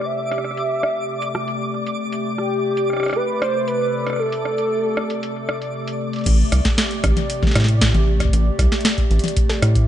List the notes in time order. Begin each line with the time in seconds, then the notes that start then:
Already playing: C3 A3 G4 D5 D6
0.01 cross-stick
0.05 E5
0.31 cross-stick, closed hi-hat
0.38 cross-stick
0.44 cross-stick
0.51 cross-stick
0.57 closed hi-hat
0.83 cross-stick
1.22 closed hi-hat
1.35 cross-stick
1.48 closed hi-hat
1.87 closed hi-hat
2.12 closed hi-hat
2.38 G4, cross-stick
2.77 closed hi-hat
2.90 cross-stick
2.93 cross-stick
2.97 cross-stick
3.00 cross-stick
3.03 cross-stick, closed hi-hat
3.06 cross-stick, closed hi-hat
3.08 cross-stick, closed hi-hat
3.11 cross-stick, closed hi-hat
3.13 B4, closed hi-hat
3.25 A4
3.42 C5, cross-stick, closed hi-hat
3.68 B4, closed hi-hat
4.07 cross-stick, closed hi-hat
4.10 cross-stick
4.13 cross-stick
4.16 A4, cross-stick
4.23 cross-stick
4.26 cross-stick
4.32 closed hi-hat
4.45 cross-stick
4.58 closed hi-hat
4.97 cross-stick
5.10 closed hi-hat
5.23 closed hi-hat
5.49 cross-stick
5.62 closed hi-hat
5.87 closed hi-hat
6.13 closed hi-hat
6.16 closed hi-hat
6.19 closed hi-hat
6.21 closed hi-hat
6.24 A1, kick, closed hi-hat
6.26 closed hi-hat, crash
6.37 G4
6.52 C2, cross-stick, closed hi-hat
6.65 kick, snare, closed hi-hat
6.78 snare, closed hi-hat
6.91 closed hi-hat
7.04 A1, kick, cross-stick, closed hi-hat
7.17 closed hi-hat, high tom
7.30 closed hi-hat
7.43 kick, snare, high tom
7.47 snare
7.51 snare
7.55 A2, cross-stick, snare, closed hi-hat
7.60 snare
7.64 snare
7.68 closed hi-hat
7.81 kick, snare, closed hi-hat
7.94 A1, closed hi-hat, high tom
8.20 kick, cross-stick, closed hi-hat
8.24 kick
8.29 kick
8.33 A1, closed hi-hat
8.59 C2, kick, cross-stick, closed hi-hat
8.72 snare, closed hi-hat
8.81 closed hi-hat
8.85 snare, closed hi-hat
8.89 closed hi-hat
8.98 kick, closed hi-hat
9.11 A1, closed hi-hat
9.19 closed hi-hat
9.24 closed hi-hat, high tom
9.28 closed hi-hat
9.37 kick, closed hi-hat
9.49 snare
9.62 A2, cross-stick, closed hi-hat
9.75 kick, closed hi-hat